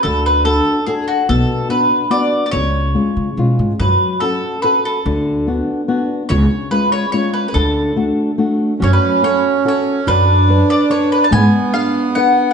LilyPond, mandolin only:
\new Staff \with { instrumentName = "Mandolin" } { \time 3/4 \key fis \minor \tempo 4 = 144 a'8 b'8 a'4 gis'8 fis'8 | a'4 b'4 \tuplet 3/2 { d''4~ d''16 d''16 } | cis''2~ cis''8 r8 | b'4 a'4 b'8 a'8~ |
a'2~ a'8 r8 | cis''4 b'8 cis''8 \tuplet 3/2 { cis''8. b'8 b'16 } | a'2 r4 | cis''16 b'8. cis''4 cis''4 |
b'4. d''8 \tuplet 3/2 { cis''8. b'8 a''16 } | gis''4 eis''4 fis''8. r16 | }